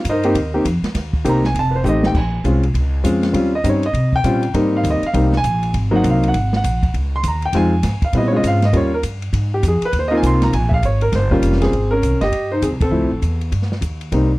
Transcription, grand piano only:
0.09 D#4 A#4 C5 D#5
0.24 A#3 C4 D#4 G4
0.54 A#3 C4 D#4 G4
1.24 A#3 C4 D#4 G4
1.29 A#5
1.46 G#5
1.59 A5
1.71 B4
1.75 C5
1.84 A3 C4 D#4 G4
1.89 D#5
2.06 G5
2.18 G#5
2.45 G#3 C4 C#4 F4
3.04 G#3 C4 C#4 F4
3.33 G3 C4 C#4 F4
3.55 D#5
3.64 G3 C4 C#4 D#4
3.69 C#5
3.86 D#5
4.16 G5
4.24 G3 C4 C#4 F4
4.54 G3 A#3 C4 D#4
4.77 F5
4.90 D#5
5.06 F5
5.14 G3 A#3 C4 D#4
5.37 G#5
5.91 F#3 A#3 C4 D#4
5.96 F#5
6.10 F5
6.28 F#5
6.56 F#5
7.16 C6
7.28 A#5
7.45 G5
7.54 G#3 C4 D#4 F4 G#5
8.04 F5
8.14 G3 B3 C4 E4 D#5
8.28 C#5
8.32 G#3 C4 C#4 F4
8.36 D#5
8.47 F5
8.65 D#5
8.73 G3 A#3 C#4 F4
8.77 C#5
8.94 A#4
9.54 G4
9.68 G#4
9.85 B4
9.99 C5
10.08 A#3 C4 D#4 F4 D#5
10.17 G#5
10.27 C6
10.43 A#5
10.54 G#5
10.69 E5
10.74 F5
10.85 C#5
11.02 A#4
11.15 C5
11.31 G3 A#3 C#4 F4
11.62 C4 G#4
11.91 C#4 A#4
12.21 G4 D#5
12.52 D#4 C5
12.63 C4 G#4
12.82 C4 A4
12.91 F3 A3 C4 E4
14.12 G3 A#3 C4 D#4

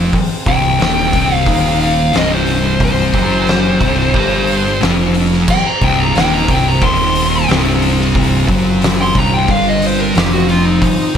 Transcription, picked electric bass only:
0.47 C1
0.80 D#1
1.14 C1
1.47 D#1
2.15 C1
3.14 F#1
3.81 C1
4.14 G1
4.82 F1
5.82 C1
6.15 D#1
6.48 C1
6.82 D#1
7.49 C1
8.49 F#1
9.15 C1
9.49 G1
10.15 F1

